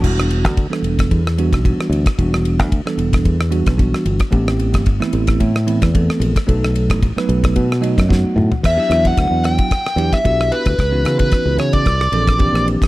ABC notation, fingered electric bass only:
X:1
M:4/4
L:1/16
Q:"Swing 16ths" 1/4=112
K:Em
V:1 name="Fingered electric bass" clef=bass
E,,,3 D,,2 z E,,,2 E,,3 B,,,2 z D,, z | E,,,3 D,,2 z E,,,2 E,,3 B,,,2 z G,,, z | A,,,3 G,,,2 z A,,,2 A,,3 E,,2 z ^A,,, z | B,,,3 A,,,2 z B,,,2 B,,3 F,,2 z A,, z |
[K:Edor] E,, z E,,2 D,, E,,2 z3 E,, z B,,,2 z D,, | C,,2 C,2 z C,, C,2 =C,,2 _B,,,3 B,,,2 z |]